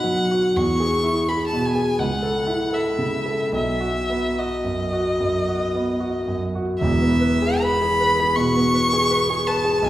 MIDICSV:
0, 0, Header, 1, 3, 480
1, 0, Start_track
1, 0, Key_signature, 4, "major"
1, 0, Tempo, 773196
1, 351, Time_signature, 4, 2, 24, 8
1, 351, Tempo, 719424
1, 1791, Tempo, 826446
1, 3231, Tempo, 800000
1, 4671, Tempo, 755668
1, 5631, Tempo, 719424
1, 6152, End_track
2, 0, Start_track
2, 0, Title_t, "Violin"
2, 0, Program_c, 0, 40
2, 0, Note_on_c, 0, 78, 68
2, 355, Note_on_c, 0, 85, 71
2, 365, Note_off_c, 0, 78, 0
2, 832, Note_on_c, 0, 83, 56
2, 842, Note_off_c, 0, 85, 0
2, 949, Note_off_c, 0, 83, 0
2, 956, Note_on_c, 0, 81, 53
2, 1079, Note_on_c, 0, 80, 56
2, 1089, Note_off_c, 0, 81, 0
2, 1303, Note_on_c, 0, 78, 61
2, 1313, Note_off_c, 0, 80, 0
2, 1801, Note_on_c, 0, 76, 55
2, 1809, Note_off_c, 0, 78, 0
2, 2264, Note_off_c, 0, 76, 0
2, 2272, Note_on_c, 0, 76, 60
2, 2758, Note_on_c, 0, 75, 48
2, 2766, Note_off_c, 0, 76, 0
2, 3950, Note_off_c, 0, 75, 0
2, 4184, Note_on_c, 0, 76, 64
2, 4673, Note_on_c, 0, 83, 75
2, 4683, Note_off_c, 0, 76, 0
2, 5156, Note_on_c, 0, 85, 84
2, 5165, Note_off_c, 0, 83, 0
2, 5872, Note_on_c, 0, 81, 68
2, 5882, Note_off_c, 0, 85, 0
2, 6118, Note_on_c, 0, 80, 60
2, 6128, Note_off_c, 0, 81, 0
2, 6152, Note_off_c, 0, 80, 0
2, 6152, End_track
3, 0, Start_track
3, 0, Title_t, "Grand piano"
3, 0, Program_c, 1, 0
3, 0, Control_c, 1, 64, 127
3, 0, Note_on_c, 1, 47, 41
3, 0, Note_on_c, 1, 63, 33
3, 0, Note_on_c, 1, 66, 34
3, 23, Note_on_c, 1, 54, 32
3, 130, Note_off_c, 1, 66, 0
3, 193, Note_on_c, 1, 66, 34
3, 284, Note_off_c, 1, 54, 0
3, 323, Note_off_c, 1, 47, 0
3, 349, Note_on_c, 1, 40, 43
3, 351, Note_off_c, 1, 66, 0
3, 363, Control_c, 1, 64, 0
3, 365, Note_off_c, 1, 63, 0
3, 470, Control_c, 1, 64, 127
3, 509, Note_on_c, 1, 68, 35
3, 666, Note_on_c, 1, 64, 33
3, 765, Note_off_c, 1, 68, 0
3, 831, Note_on_c, 1, 68, 33
3, 922, Note_off_c, 1, 64, 0
3, 993, Note_on_c, 1, 47, 29
3, 1082, Note_off_c, 1, 68, 0
3, 1143, Note_on_c, 1, 68, 32
3, 1240, Note_off_c, 1, 47, 0
3, 1273, Note_off_c, 1, 40, 0
3, 1299, Note_off_c, 1, 68, 0
3, 1302, Note_on_c, 1, 37, 39
3, 1310, Control_c, 1, 64, 0
3, 1431, Control_c, 1, 64, 127
3, 1459, Note_on_c, 1, 69, 32
3, 1621, Note_on_c, 1, 64, 28
3, 1722, Note_off_c, 1, 69, 0
3, 1792, Note_on_c, 1, 69, 31
3, 1880, Note_off_c, 1, 64, 0
3, 1943, Note_on_c, 1, 49, 29
3, 2036, Note_off_c, 1, 69, 0
3, 2101, Note_on_c, 1, 69, 30
3, 2194, Note_off_c, 1, 49, 0
3, 2236, Note_off_c, 1, 37, 0
3, 2256, Note_on_c, 1, 35, 38
3, 2260, Note_off_c, 1, 69, 0
3, 2268, Control_c, 1, 64, 0
3, 2371, Control_c, 1, 64, 127
3, 2418, Note_on_c, 1, 66, 30
3, 2588, Note_on_c, 1, 59, 28
3, 2682, Note_off_c, 1, 66, 0
3, 2755, Note_on_c, 1, 66, 32
3, 2848, Note_off_c, 1, 59, 0
3, 2906, Note_on_c, 1, 42, 27
3, 3012, Note_off_c, 1, 66, 0
3, 3069, Note_on_c, 1, 66, 29
3, 3164, Note_off_c, 1, 42, 0
3, 3205, Note_off_c, 1, 35, 0
3, 3230, Note_on_c, 1, 42, 30
3, 3324, Note_off_c, 1, 66, 0
3, 3399, Note_on_c, 1, 66, 30
3, 3485, Note_off_c, 1, 42, 0
3, 3557, Note_on_c, 1, 59, 27
3, 3647, Note_off_c, 1, 66, 0
3, 3709, Note_on_c, 1, 66, 30
3, 3805, Note_off_c, 1, 59, 0
3, 3875, Note_on_c, 1, 42, 28
3, 3963, Note_off_c, 1, 66, 0
3, 4040, Note_on_c, 1, 66, 31
3, 4127, Note_off_c, 1, 42, 0
3, 4191, Note_off_c, 1, 66, 0
3, 4195, Control_c, 1, 64, 0
3, 4195, Note_on_c, 1, 28, 42
3, 4205, Note_on_c, 1, 40, 46
3, 4301, Control_c, 1, 64, 127
3, 4319, Note_on_c, 1, 59, 36
3, 4434, Note_on_c, 1, 71, 36
3, 4509, Note_off_c, 1, 59, 0
3, 4562, Note_on_c, 1, 68, 36
3, 4626, Note_off_c, 1, 71, 0
3, 4682, Note_on_c, 1, 71, 40
3, 4751, Note_off_c, 1, 68, 0
3, 4806, Note_on_c, 1, 68, 35
3, 4873, Note_off_c, 1, 71, 0
3, 4925, Note_on_c, 1, 71, 40
3, 4993, Note_off_c, 1, 68, 0
3, 5047, Note_on_c, 1, 68, 36
3, 5111, Note_off_c, 1, 71, 0
3, 5134, Note_off_c, 1, 28, 0
3, 5139, Note_off_c, 1, 40, 0
3, 5156, Note_on_c, 1, 47, 37
3, 5231, Note_off_c, 1, 68, 0
3, 5281, Note_on_c, 1, 59, 38
3, 5345, Note_off_c, 1, 47, 0
3, 5393, Note_on_c, 1, 71, 37
3, 5468, Note_off_c, 1, 59, 0
3, 5515, Note_on_c, 1, 68, 39
3, 5582, Note_off_c, 1, 71, 0
3, 5624, Note_on_c, 1, 71, 41
3, 5705, Note_off_c, 1, 68, 0
3, 5756, Note_on_c, 1, 68, 38
3, 5821, Note_off_c, 1, 71, 0
3, 5870, Note_on_c, 1, 71, 40
3, 5945, Note_off_c, 1, 68, 0
3, 5986, Note_on_c, 1, 68, 39
3, 6061, Note_off_c, 1, 71, 0
3, 6105, Note_on_c, 1, 35, 49
3, 6107, Note_off_c, 1, 68, 0
3, 6120, Control_c, 1, 64, 0
3, 6152, Note_off_c, 1, 35, 0
3, 6152, End_track
0, 0, End_of_file